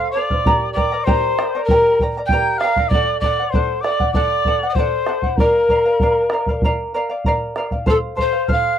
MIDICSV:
0, 0, Header, 1, 5, 480
1, 0, Start_track
1, 0, Key_signature, -2, "minor"
1, 0, Tempo, 617920
1, 353, Time_signature, 4, 2, 24, 8
1, 6826, End_track
2, 0, Start_track
2, 0, Title_t, "Quena"
2, 0, Program_c, 0, 77
2, 81, Note_on_c, 0, 86, 86
2, 545, Note_off_c, 0, 86, 0
2, 569, Note_on_c, 0, 86, 82
2, 810, Note_on_c, 0, 84, 87
2, 821, Note_off_c, 0, 86, 0
2, 1276, Note_off_c, 0, 84, 0
2, 1281, Note_on_c, 0, 82, 81
2, 1546, Note_off_c, 0, 82, 0
2, 1764, Note_on_c, 0, 91, 82
2, 2005, Note_on_c, 0, 89, 73
2, 2017, Note_off_c, 0, 91, 0
2, 2241, Note_on_c, 0, 86, 81
2, 2252, Note_off_c, 0, 89, 0
2, 2483, Note_off_c, 0, 86, 0
2, 2488, Note_on_c, 0, 86, 80
2, 2717, Note_on_c, 0, 84, 86
2, 2728, Note_off_c, 0, 86, 0
2, 2959, Note_on_c, 0, 86, 73
2, 2971, Note_off_c, 0, 84, 0
2, 3197, Note_off_c, 0, 86, 0
2, 3202, Note_on_c, 0, 86, 86
2, 3649, Note_off_c, 0, 86, 0
2, 3649, Note_on_c, 0, 86, 50
2, 3693, Note_on_c, 0, 84, 77
2, 3705, Note_off_c, 0, 86, 0
2, 4172, Note_on_c, 0, 82, 71
2, 4183, Note_off_c, 0, 84, 0
2, 5140, Note_off_c, 0, 82, 0
2, 6114, Note_on_c, 0, 81, 72
2, 6168, Note_off_c, 0, 81, 0
2, 6343, Note_on_c, 0, 84, 83
2, 6571, Note_off_c, 0, 84, 0
2, 6585, Note_on_c, 0, 89, 91
2, 6826, Note_off_c, 0, 89, 0
2, 6826, End_track
3, 0, Start_track
3, 0, Title_t, "Charango"
3, 0, Program_c, 1, 24
3, 0, Note_on_c, 1, 69, 78
3, 0, Note_on_c, 1, 72, 81
3, 0, Note_on_c, 1, 77, 83
3, 111, Note_off_c, 1, 69, 0
3, 119, Note_off_c, 1, 72, 0
3, 120, Note_on_c, 1, 69, 51
3, 121, Note_off_c, 1, 77, 0
3, 128, Note_on_c, 1, 72, 54
3, 130, Note_on_c, 1, 77, 61
3, 229, Note_off_c, 1, 77, 0
3, 237, Note_off_c, 1, 69, 0
3, 238, Note_on_c, 1, 77, 51
3, 241, Note_off_c, 1, 72, 0
3, 255, Note_on_c, 1, 72, 40
3, 356, Note_off_c, 1, 77, 0
3, 358, Note_off_c, 1, 72, 0
3, 361, Note_on_c, 1, 67, 81
3, 361, Note_on_c, 1, 70, 77
3, 362, Note_on_c, 1, 79, 65
3, 363, Note_on_c, 1, 82, 80
3, 365, Note_on_c, 1, 74, 80
3, 577, Note_off_c, 1, 79, 0
3, 583, Note_off_c, 1, 74, 0
3, 584, Note_off_c, 1, 70, 0
3, 587, Note_off_c, 1, 82, 0
3, 587, Note_on_c, 1, 79, 59
3, 593, Note_on_c, 1, 74, 64
3, 594, Note_on_c, 1, 70, 64
3, 596, Note_on_c, 1, 82, 66
3, 597, Note_off_c, 1, 67, 0
3, 704, Note_off_c, 1, 82, 0
3, 709, Note_off_c, 1, 79, 0
3, 712, Note_off_c, 1, 74, 0
3, 713, Note_off_c, 1, 70, 0
3, 713, Note_on_c, 1, 82, 57
3, 725, Note_on_c, 1, 74, 47
3, 727, Note_on_c, 1, 70, 49
3, 821, Note_off_c, 1, 74, 0
3, 822, Note_off_c, 1, 70, 0
3, 829, Note_on_c, 1, 79, 67
3, 830, Note_off_c, 1, 82, 0
3, 830, Note_on_c, 1, 67, 74
3, 830, Note_on_c, 1, 74, 77
3, 831, Note_on_c, 1, 70, 76
3, 839, Note_on_c, 1, 82, 76
3, 1065, Note_off_c, 1, 79, 0
3, 1070, Note_off_c, 1, 67, 0
3, 1071, Note_off_c, 1, 70, 0
3, 1071, Note_off_c, 1, 74, 0
3, 1075, Note_off_c, 1, 82, 0
3, 1075, Note_on_c, 1, 79, 50
3, 1081, Note_on_c, 1, 70, 53
3, 1081, Note_on_c, 1, 74, 55
3, 1087, Note_on_c, 1, 82, 56
3, 1193, Note_off_c, 1, 79, 0
3, 1195, Note_off_c, 1, 82, 0
3, 1196, Note_off_c, 1, 70, 0
3, 1196, Note_off_c, 1, 74, 0
3, 1204, Note_on_c, 1, 82, 54
3, 1212, Note_on_c, 1, 74, 49
3, 1216, Note_on_c, 1, 70, 40
3, 1316, Note_off_c, 1, 74, 0
3, 1317, Note_off_c, 1, 82, 0
3, 1318, Note_off_c, 1, 70, 0
3, 1323, Note_on_c, 1, 79, 81
3, 1325, Note_on_c, 1, 67, 67
3, 1325, Note_on_c, 1, 74, 78
3, 1327, Note_on_c, 1, 70, 69
3, 1330, Note_on_c, 1, 82, 82
3, 1553, Note_off_c, 1, 79, 0
3, 1557, Note_off_c, 1, 67, 0
3, 1557, Note_off_c, 1, 74, 0
3, 1558, Note_off_c, 1, 70, 0
3, 1560, Note_off_c, 1, 82, 0
3, 1563, Note_on_c, 1, 79, 60
3, 1568, Note_on_c, 1, 70, 65
3, 1574, Note_on_c, 1, 74, 70
3, 1579, Note_on_c, 1, 82, 70
3, 1676, Note_off_c, 1, 79, 0
3, 1679, Note_off_c, 1, 70, 0
3, 1679, Note_off_c, 1, 82, 0
3, 1682, Note_off_c, 1, 74, 0
3, 1688, Note_on_c, 1, 82, 55
3, 1695, Note_on_c, 1, 74, 48
3, 1701, Note_on_c, 1, 70, 43
3, 1797, Note_off_c, 1, 70, 0
3, 1799, Note_off_c, 1, 82, 0
3, 1800, Note_on_c, 1, 67, 83
3, 1801, Note_off_c, 1, 74, 0
3, 1806, Note_on_c, 1, 70, 81
3, 1807, Note_on_c, 1, 79, 85
3, 1810, Note_on_c, 1, 74, 73
3, 1810, Note_on_c, 1, 82, 80
3, 2034, Note_off_c, 1, 67, 0
3, 2035, Note_off_c, 1, 79, 0
3, 2037, Note_off_c, 1, 70, 0
3, 2039, Note_off_c, 1, 74, 0
3, 2039, Note_off_c, 1, 82, 0
3, 2044, Note_on_c, 1, 79, 55
3, 2048, Note_on_c, 1, 74, 57
3, 2050, Note_on_c, 1, 70, 54
3, 2052, Note_on_c, 1, 82, 68
3, 2146, Note_off_c, 1, 82, 0
3, 2155, Note_off_c, 1, 74, 0
3, 2155, Note_on_c, 1, 82, 55
3, 2156, Note_off_c, 1, 79, 0
3, 2159, Note_off_c, 1, 70, 0
3, 2164, Note_on_c, 1, 74, 46
3, 2170, Note_on_c, 1, 70, 42
3, 2272, Note_off_c, 1, 82, 0
3, 2276, Note_off_c, 1, 74, 0
3, 2279, Note_off_c, 1, 70, 0
3, 2282, Note_on_c, 1, 69, 74
3, 2287, Note_on_c, 1, 78, 81
3, 2288, Note_on_c, 1, 74, 69
3, 2506, Note_off_c, 1, 69, 0
3, 2508, Note_off_c, 1, 74, 0
3, 2515, Note_on_c, 1, 69, 60
3, 2517, Note_off_c, 1, 78, 0
3, 2517, Note_on_c, 1, 74, 66
3, 2527, Note_on_c, 1, 78, 68
3, 2627, Note_off_c, 1, 78, 0
3, 2631, Note_off_c, 1, 69, 0
3, 2632, Note_off_c, 1, 74, 0
3, 2636, Note_on_c, 1, 78, 56
3, 2651, Note_on_c, 1, 74, 49
3, 2745, Note_off_c, 1, 74, 0
3, 2752, Note_off_c, 1, 78, 0
3, 2752, Note_on_c, 1, 69, 65
3, 2755, Note_on_c, 1, 74, 69
3, 2761, Note_on_c, 1, 78, 74
3, 2975, Note_off_c, 1, 69, 0
3, 2982, Note_off_c, 1, 74, 0
3, 2984, Note_on_c, 1, 69, 50
3, 2991, Note_on_c, 1, 74, 52
3, 2992, Note_off_c, 1, 78, 0
3, 3001, Note_on_c, 1, 78, 65
3, 3099, Note_off_c, 1, 78, 0
3, 3106, Note_off_c, 1, 69, 0
3, 3108, Note_on_c, 1, 78, 56
3, 3109, Note_off_c, 1, 74, 0
3, 3119, Note_on_c, 1, 74, 48
3, 3213, Note_off_c, 1, 74, 0
3, 3222, Note_on_c, 1, 74, 81
3, 3223, Note_off_c, 1, 78, 0
3, 3225, Note_on_c, 1, 69, 76
3, 3232, Note_on_c, 1, 78, 84
3, 3458, Note_off_c, 1, 69, 0
3, 3464, Note_off_c, 1, 74, 0
3, 3467, Note_on_c, 1, 69, 60
3, 3470, Note_off_c, 1, 78, 0
3, 3473, Note_on_c, 1, 74, 61
3, 3478, Note_on_c, 1, 78, 73
3, 3587, Note_off_c, 1, 69, 0
3, 3588, Note_off_c, 1, 78, 0
3, 3590, Note_off_c, 1, 74, 0
3, 3598, Note_on_c, 1, 78, 55
3, 3609, Note_on_c, 1, 74, 38
3, 3712, Note_off_c, 1, 74, 0
3, 3712, Note_off_c, 1, 78, 0
3, 3716, Note_on_c, 1, 69, 72
3, 3721, Note_on_c, 1, 74, 81
3, 3726, Note_on_c, 1, 78, 80
3, 3931, Note_off_c, 1, 69, 0
3, 3940, Note_on_c, 1, 69, 50
3, 3941, Note_off_c, 1, 74, 0
3, 3941, Note_off_c, 1, 78, 0
3, 3950, Note_on_c, 1, 74, 53
3, 3950, Note_on_c, 1, 78, 64
3, 4056, Note_off_c, 1, 78, 0
3, 4063, Note_off_c, 1, 69, 0
3, 4065, Note_on_c, 1, 78, 50
3, 4068, Note_off_c, 1, 74, 0
3, 4085, Note_on_c, 1, 74, 38
3, 4185, Note_off_c, 1, 74, 0
3, 4186, Note_off_c, 1, 78, 0
3, 4194, Note_on_c, 1, 70, 70
3, 4194, Note_on_c, 1, 74, 83
3, 4202, Note_on_c, 1, 77, 76
3, 4416, Note_off_c, 1, 70, 0
3, 4418, Note_off_c, 1, 74, 0
3, 4426, Note_off_c, 1, 77, 0
3, 4426, Note_on_c, 1, 70, 61
3, 4427, Note_on_c, 1, 74, 63
3, 4435, Note_on_c, 1, 77, 69
3, 4540, Note_off_c, 1, 77, 0
3, 4546, Note_off_c, 1, 70, 0
3, 4547, Note_off_c, 1, 74, 0
3, 4549, Note_on_c, 1, 77, 55
3, 4560, Note_on_c, 1, 74, 49
3, 4668, Note_off_c, 1, 77, 0
3, 4672, Note_off_c, 1, 74, 0
3, 4672, Note_on_c, 1, 70, 59
3, 4681, Note_on_c, 1, 74, 72
3, 4685, Note_on_c, 1, 77, 72
3, 4898, Note_off_c, 1, 70, 0
3, 4907, Note_on_c, 1, 70, 54
3, 4909, Note_off_c, 1, 74, 0
3, 4912, Note_off_c, 1, 77, 0
3, 4918, Note_on_c, 1, 74, 59
3, 4921, Note_on_c, 1, 77, 61
3, 5027, Note_off_c, 1, 70, 0
3, 5031, Note_off_c, 1, 77, 0
3, 5033, Note_off_c, 1, 74, 0
3, 5040, Note_on_c, 1, 77, 57
3, 5049, Note_on_c, 1, 74, 49
3, 5154, Note_off_c, 1, 77, 0
3, 5159, Note_off_c, 1, 74, 0
3, 5161, Note_on_c, 1, 70, 78
3, 5167, Note_on_c, 1, 74, 74
3, 5169, Note_on_c, 1, 77, 83
3, 5384, Note_off_c, 1, 70, 0
3, 5389, Note_off_c, 1, 74, 0
3, 5393, Note_on_c, 1, 70, 68
3, 5398, Note_on_c, 1, 74, 70
3, 5399, Note_off_c, 1, 77, 0
3, 5407, Note_on_c, 1, 77, 72
3, 5502, Note_off_c, 1, 77, 0
3, 5511, Note_off_c, 1, 70, 0
3, 5511, Note_on_c, 1, 77, 54
3, 5514, Note_off_c, 1, 74, 0
3, 5521, Note_on_c, 1, 74, 49
3, 5630, Note_off_c, 1, 77, 0
3, 5635, Note_off_c, 1, 74, 0
3, 5640, Note_on_c, 1, 70, 84
3, 5648, Note_on_c, 1, 74, 82
3, 5654, Note_on_c, 1, 77, 83
3, 5861, Note_off_c, 1, 70, 0
3, 5868, Note_off_c, 1, 74, 0
3, 5871, Note_on_c, 1, 70, 53
3, 5876, Note_off_c, 1, 77, 0
3, 5878, Note_on_c, 1, 74, 58
3, 5885, Note_on_c, 1, 77, 70
3, 5987, Note_off_c, 1, 77, 0
3, 5991, Note_off_c, 1, 70, 0
3, 5994, Note_off_c, 1, 74, 0
3, 5997, Note_on_c, 1, 77, 47
3, 6005, Note_on_c, 1, 74, 36
3, 6105, Note_on_c, 1, 69, 72
3, 6107, Note_off_c, 1, 77, 0
3, 6110, Note_off_c, 1, 74, 0
3, 6113, Note_on_c, 1, 72, 69
3, 6117, Note_on_c, 1, 77, 75
3, 6334, Note_off_c, 1, 69, 0
3, 6337, Note_off_c, 1, 72, 0
3, 6343, Note_on_c, 1, 69, 60
3, 6346, Note_on_c, 1, 72, 66
3, 6349, Note_off_c, 1, 77, 0
3, 6358, Note_on_c, 1, 77, 60
3, 6458, Note_off_c, 1, 77, 0
3, 6467, Note_off_c, 1, 72, 0
3, 6468, Note_off_c, 1, 69, 0
3, 6468, Note_on_c, 1, 77, 52
3, 6476, Note_on_c, 1, 72, 39
3, 6583, Note_off_c, 1, 72, 0
3, 6586, Note_off_c, 1, 77, 0
3, 6590, Note_on_c, 1, 69, 66
3, 6592, Note_on_c, 1, 72, 65
3, 6595, Note_on_c, 1, 77, 75
3, 6826, Note_off_c, 1, 69, 0
3, 6826, Note_off_c, 1, 72, 0
3, 6826, Note_off_c, 1, 77, 0
3, 6826, End_track
4, 0, Start_track
4, 0, Title_t, "Pan flute"
4, 0, Program_c, 2, 75
4, 0, Note_on_c, 2, 77, 104
4, 80, Note_off_c, 2, 77, 0
4, 88, Note_on_c, 2, 74, 95
4, 548, Note_off_c, 2, 74, 0
4, 566, Note_on_c, 2, 74, 84
4, 808, Note_on_c, 2, 72, 92
4, 820, Note_off_c, 2, 74, 0
4, 1270, Note_off_c, 2, 72, 0
4, 1275, Note_on_c, 2, 70, 102
4, 1542, Note_off_c, 2, 70, 0
4, 1752, Note_on_c, 2, 79, 95
4, 2009, Note_on_c, 2, 77, 101
4, 2021, Note_off_c, 2, 79, 0
4, 2243, Note_on_c, 2, 74, 101
4, 2255, Note_off_c, 2, 77, 0
4, 2481, Note_off_c, 2, 74, 0
4, 2486, Note_on_c, 2, 74, 91
4, 2728, Note_on_c, 2, 72, 80
4, 2740, Note_off_c, 2, 74, 0
4, 2966, Note_on_c, 2, 74, 90
4, 2978, Note_off_c, 2, 72, 0
4, 3206, Note_off_c, 2, 74, 0
4, 3210, Note_on_c, 2, 74, 104
4, 3647, Note_off_c, 2, 74, 0
4, 3647, Note_on_c, 2, 74, 58
4, 3680, Note_on_c, 2, 72, 86
4, 3692, Note_off_c, 2, 74, 0
4, 4176, Note_on_c, 2, 70, 90
4, 4187, Note_off_c, 2, 72, 0
4, 5142, Note_off_c, 2, 70, 0
4, 6132, Note_on_c, 2, 69, 88
4, 6184, Note_off_c, 2, 69, 0
4, 6374, Note_on_c, 2, 72, 94
4, 6588, Note_off_c, 2, 72, 0
4, 6619, Note_on_c, 2, 77, 92
4, 6826, Note_off_c, 2, 77, 0
4, 6826, End_track
5, 0, Start_track
5, 0, Title_t, "Bombo"
5, 235, Note_on_c, 9, 43, 53
5, 313, Note_off_c, 9, 43, 0
5, 356, Note_on_c, 9, 43, 74
5, 433, Note_off_c, 9, 43, 0
5, 597, Note_on_c, 9, 43, 54
5, 675, Note_off_c, 9, 43, 0
5, 834, Note_on_c, 9, 43, 69
5, 911, Note_off_c, 9, 43, 0
5, 1077, Note_on_c, 9, 37, 49
5, 1154, Note_off_c, 9, 37, 0
5, 1308, Note_on_c, 9, 43, 64
5, 1386, Note_off_c, 9, 43, 0
5, 1549, Note_on_c, 9, 43, 53
5, 1627, Note_off_c, 9, 43, 0
5, 1777, Note_on_c, 9, 43, 58
5, 1855, Note_off_c, 9, 43, 0
5, 2025, Note_on_c, 9, 37, 42
5, 2103, Note_off_c, 9, 37, 0
5, 2146, Note_on_c, 9, 43, 51
5, 2223, Note_off_c, 9, 43, 0
5, 2260, Note_on_c, 9, 43, 68
5, 2338, Note_off_c, 9, 43, 0
5, 2499, Note_on_c, 9, 43, 51
5, 2576, Note_off_c, 9, 43, 0
5, 2747, Note_on_c, 9, 43, 62
5, 2825, Note_off_c, 9, 43, 0
5, 2987, Note_on_c, 9, 37, 46
5, 3064, Note_off_c, 9, 37, 0
5, 3106, Note_on_c, 9, 43, 52
5, 3183, Note_off_c, 9, 43, 0
5, 3217, Note_on_c, 9, 43, 60
5, 3294, Note_off_c, 9, 43, 0
5, 3455, Note_on_c, 9, 43, 52
5, 3533, Note_off_c, 9, 43, 0
5, 3690, Note_on_c, 9, 43, 60
5, 3768, Note_off_c, 9, 43, 0
5, 3934, Note_on_c, 9, 37, 43
5, 4012, Note_off_c, 9, 37, 0
5, 4056, Note_on_c, 9, 43, 47
5, 4134, Note_off_c, 9, 43, 0
5, 4176, Note_on_c, 9, 43, 67
5, 4253, Note_off_c, 9, 43, 0
5, 4418, Note_on_c, 9, 43, 45
5, 4496, Note_off_c, 9, 43, 0
5, 4658, Note_on_c, 9, 43, 58
5, 4735, Note_off_c, 9, 43, 0
5, 4892, Note_on_c, 9, 37, 43
5, 4970, Note_off_c, 9, 37, 0
5, 5021, Note_on_c, 9, 43, 50
5, 5099, Note_off_c, 9, 43, 0
5, 5140, Note_on_c, 9, 43, 58
5, 5218, Note_off_c, 9, 43, 0
5, 5628, Note_on_c, 9, 43, 55
5, 5705, Note_off_c, 9, 43, 0
5, 5871, Note_on_c, 9, 37, 37
5, 5949, Note_off_c, 9, 37, 0
5, 5989, Note_on_c, 9, 43, 42
5, 6067, Note_off_c, 9, 43, 0
5, 6109, Note_on_c, 9, 43, 65
5, 6186, Note_off_c, 9, 43, 0
5, 6353, Note_on_c, 9, 43, 42
5, 6431, Note_off_c, 9, 43, 0
5, 6591, Note_on_c, 9, 43, 57
5, 6668, Note_off_c, 9, 43, 0
5, 6826, End_track
0, 0, End_of_file